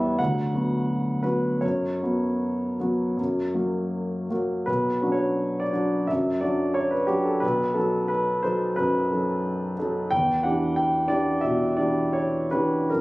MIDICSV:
0, 0, Header, 1, 2, 480
1, 0, Start_track
1, 0, Key_signature, 2, "minor"
1, 0, Tempo, 681044
1, 618, Tempo, 767263
1, 1086, Time_signature, 4, 2, 24, 8
1, 2058, Tempo, 748130
1, 3018, Tempo, 709220
1, 3498, Tempo, 681818
1, 5418, Tempo, 664452
1, 7818, Tempo, 701754
1, 8298, Tempo, 755668
1, 8853, End_track
2, 0, Start_track
2, 0, Title_t, "Grand piano"
2, 0, Program_c, 0, 0
2, 0, Control_c, 0, 64, 127
2, 0, Note_on_c, 0, 40, 46
2, 0, Note_on_c, 0, 55, 35
2, 0, Note_on_c, 0, 59, 37
2, 0, Note_on_c, 0, 64, 38
2, 0, Note_on_c, 0, 73, 70
2, 0, Note_on_c, 0, 74, 55
2, 0, Note_on_c, 0, 76, 66
2, 113, Note_off_c, 0, 55, 0
2, 113, Note_off_c, 0, 59, 0
2, 116, Note_off_c, 0, 64, 0
2, 130, Note_off_c, 0, 76, 0
2, 131, Note_on_c, 0, 78, 72
2, 140, Note_on_c, 0, 38, 45
2, 145, Control_c, 0, 64, 0
2, 148, Note_off_c, 0, 40, 0
2, 152, Note_off_c, 0, 73, 0
2, 153, Note_off_c, 0, 74, 0
2, 255, Control_c, 0, 64, 127
2, 368, Note_off_c, 0, 38, 0
2, 374, Note_on_c, 0, 59, 32
2, 376, Note_on_c, 0, 54, 31
2, 381, Note_on_c, 0, 66, 33
2, 820, Note_off_c, 0, 59, 0
2, 821, Note_off_c, 0, 54, 0
2, 823, Note_off_c, 0, 66, 0
2, 836, Note_on_c, 0, 71, 53
2, 842, Note_on_c, 0, 54, 29
2, 843, Note_off_c, 0, 78, 0
2, 845, Note_on_c, 0, 59, 29
2, 846, Note_on_c, 0, 66, 32
2, 1061, Note_off_c, 0, 54, 0
2, 1062, Note_off_c, 0, 59, 0
2, 1063, Note_off_c, 0, 66, 0
2, 1077, Note_on_c, 0, 73, 51
2, 1082, Note_off_c, 0, 71, 0
2, 1083, Note_on_c, 0, 42, 38
2, 1098, Control_c, 0, 64, 0
2, 1216, Control_c, 0, 64, 127
2, 1330, Note_off_c, 0, 42, 0
2, 1336, Note_on_c, 0, 59, 29
2, 1337, Note_on_c, 0, 54, 29
2, 1340, Note_on_c, 0, 66, 32
2, 1797, Note_off_c, 0, 59, 0
2, 1798, Note_off_c, 0, 54, 0
2, 1799, Note_off_c, 0, 66, 0
2, 1822, Note_on_c, 0, 54, 28
2, 1822, Note_on_c, 0, 59, 26
2, 1826, Note_on_c, 0, 66, 30
2, 2034, Note_off_c, 0, 54, 0
2, 2034, Note_off_c, 0, 59, 0
2, 2036, Note_off_c, 0, 66, 0
2, 2054, Note_on_c, 0, 42, 35
2, 2070, Control_c, 0, 64, 0
2, 2185, Control_c, 0, 64, 127
2, 2291, Note_off_c, 0, 42, 0
2, 2291, Note_on_c, 0, 54, 26
2, 2295, Note_on_c, 0, 58, 25
2, 2299, Note_on_c, 0, 66, 26
2, 2752, Note_off_c, 0, 54, 0
2, 2754, Note_off_c, 0, 58, 0
2, 2756, Note_off_c, 0, 66, 0
2, 2777, Note_off_c, 0, 73, 0
2, 2778, Note_on_c, 0, 54, 27
2, 2779, Note_on_c, 0, 58, 27
2, 2786, Note_on_c, 0, 66, 31
2, 2993, Note_off_c, 0, 54, 0
2, 2993, Note_off_c, 0, 58, 0
2, 2997, Note_off_c, 0, 66, 0
2, 3008, Note_on_c, 0, 71, 61
2, 3015, Note_on_c, 0, 35, 40
2, 3031, Control_c, 0, 64, 0
2, 3155, Control_c, 0, 64, 127
2, 3250, Note_off_c, 0, 35, 0
2, 3251, Note_on_c, 0, 54, 33
2, 3253, Note_on_c, 0, 62, 33
2, 3256, Note_on_c, 0, 66, 36
2, 3319, Note_on_c, 0, 73, 58
2, 3333, Note_off_c, 0, 71, 0
2, 3648, Note_on_c, 0, 74, 60
2, 3655, Note_off_c, 0, 73, 0
2, 3716, Note_off_c, 0, 54, 0
2, 3717, Note_off_c, 0, 62, 0
2, 3719, Note_off_c, 0, 66, 0
2, 3739, Note_on_c, 0, 54, 31
2, 3742, Note_on_c, 0, 62, 32
2, 3743, Note_on_c, 0, 66, 37
2, 3965, Note_off_c, 0, 54, 0
2, 3966, Note_off_c, 0, 62, 0
2, 3967, Note_off_c, 0, 66, 0
2, 3983, Note_on_c, 0, 76, 62
2, 3986, Note_off_c, 0, 74, 0
2, 3992, Note_on_c, 0, 42, 38
2, 4006, Control_c, 0, 64, 0
2, 4132, Control_c, 0, 64, 127
2, 4219, Note_on_c, 0, 74, 57
2, 4226, Note_off_c, 0, 42, 0
2, 4228, Note_on_c, 0, 54, 29
2, 4229, Note_off_c, 0, 76, 0
2, 4231, Note_on_c, 0, 62, 30
2, 4234, Note_on_c, 0, 66, 33
2, 4454, Note_on_c, 0, 73, 65
2, 4460, Note_off_c, 0, 74, 0
2, 4571, Note_on_c, 0, 71, 57
2, 4576, Note_off_c, 0, 73, 0
2, 4669, Note_off_c, 0, 54, 0
2, 4670, Note_off_c, 0, 62, 0
2, 4671, Note_off_c, 0, 66, 0
2, 4684, Note_on_c, 0, 67, 58
2, 4692, Note_on_c, 0, 54, 33
2, 4694, Note_off_c, 0, 71, 0
2, 4695, Note_on_c, 0, 62, 34
2, 4699, Note_on_c, 0, 66, 37
2, 4804, Note_on_c, 0, 69, 53
2, 4809, Note_off_c, 0, 67, 0
2, 4908, Note_off_c, 0, 54, 0
2, 4910, Note_off_c, 0, 62, 0
2, 4912, Note_off_c, 0, 66, 0
2, 4919, Note_on_c, 0, 71, 64
2, 4926, Note_on_c, 0, 35, 46
2, 4930, Note_off_c, 0, 69, 0
2, 4947, Control_c, 0, 64, 0
2, 5061, Control_c, 0, 64, 127
2, 5157, Note_on_c, 0, 69, 62
2, 5164, Note_off_c, 0, 35, 0
2, 5167, Note_on_c, 0, 63, 38
2, 5168, Note_off_c, 0, 71, 0
2, 5169, Note_on_c, 0, 54, 37
2, 5397, Note_on_c, 0, 71, 65
2, 5409, Note_off_c, 0, 69, 0
2, 5628, Note_off_c, 0, 54, 0
2, 5628, Note_off_c, 0, 63, 0
2, 5645, Note_on_c, 0, 72, 67
2, 5650, Note_off_c, 0, 71, 0
2, 5651, Note_on_c, 0, 54, 35
2, 5654, Note_on_c, 0, 63, 37
2, 5658, Note_on_c, 0, 69, 41
2, 5871, Note_off_c, 0, 54, 0
2, 5873, Note_off_c, 0, 63, 0
2, 5875, Note_off_c, 0, 69, 0
2, 5887, Note_on_c, 0, 71, 69
2, 5893, Note_off_c, 0, 72, 0
2, 5897, Note_on_c, 0, 42, 45
2, 6131, Note_off_c, 0, 42, 0
2, 6140, Note_on_c, 0, 54, 35
2, 6140, Note_on_c, 0, 63, 35
2, 6147, Note_on_c, 0, 69, 39
2, 6589, Note_off_c, 0, 54, 0
2, 6589, Note_off_c, 0, 63, 0
2, 6592, Note_off_c, 0, 69, 0
2, 6611, Note_off_c, 0, 71, 0
2, 6629, Note_on_c, 0, 54, 38
2, 6632, Note_on_c, 0, 63, 38
2, 6635, Note_on_c, 0, 69, 42
2, 6841, Note_off_c, 0, 54, 0
2, 6843, Note_off_c, 0, 63, 0
2, 6845, Note_off_c, 0, 69, 0
2, 6859, Note_on_c, 0, 79, 76
2, 6869, Note_on_c, 0, 40, 47
2, 6870, Control_c, 0, 64, 0
2, 6992, Control_c, 0, 64, 127
2, 7094, Note_on_c, 0, 78, 69
2, 7098, Note_off_c, 0, 40, 0
2, 7100, Note_off_c, 0, 79, 0
2, 7105, Note_on_c, 0, 62, 36
2, 7106, Note_on_c, 0, 52, 40
2, 7112, Note_on_c, 0, 67, 41
2, 7333, Note_on_c, 0, 79, 67
2, 7335, Note_off_c, 0, 78, 0
2, 7548, Note_off_c, 0, 52, 0
2, 7548, Note_off_c, 0, 62, 0
2, 7551, Note_off_c, 0, 67, 0
2, 7563, Note_on_c, 0, 74, 69
2, 7571, Note_on_c, 0, 52, 37
2, 7572, Note_off_c, 0, 79, 0
2, 7573, Note_on_c, 0, 67, 42
2, 7576, Note_on_c, 0, 62, 37
2, 7791, Note_off_c, 0, 52, 0
2, 7792, Note_off_c, 0, 67, 0
2, 7794, Note_off_c, 0, 62, 0
2, 7801, Note_on_c, 0, 76, 69
2, 7809, Note_on_c, 0, 47, 40
2, 7811, Note_off_c, 0, 74, 0
2, 8044, Note_off_c, 0, 47, 0
2, 8046, Note_on_c, 0, 74, 64
2, 8047, Note_off_c, 0, 76, 0
2, 8054, Note_on_c, 0, 52, 34
2, 8056, Note_on_c, 0, 62, 32
2, 8056, Note_on_c, 0, 67, 34
2, 8293, Note_off_c, 0, 74, 0
2, 8295, Note_on_c, 0, 73, 60
2, 8504, Note_off_c, 0, 52, 0
2, 8505, Note_off_c, 0, 67, 0
2, 8506, Note_off_c, 0, 62, 0
2, 8528, Note_off_c, 0, 73, 0
2, 8536, Note_on_c, 0, 71, 59
2, 8545, Note_on_c, 0, 52, 35
2, 8546, Note_on_c, 0, 62, 33
2, 8548, Note_on_c, 0, 67, 35
2, 8758, Note_off_c, 0, 52, 0
2, 8758, Note_off_c, 0, 62, 0
2, 8759, Note_off_c, 0, 67, 0
2, 8777, Note_off_c, 0, 71, 0
2, 8781, Note_on_c, 0, 70, 55
2, 8788, Note_on_c, 0, 42, 41
2, 8789, Control_c, 0, 64, 0
2, 8853, Note_off_c, 0, 42, 0
2, 8853, Note_off_c, 0, 70, 0
2, 8853, End_track
0, 0, End_of_file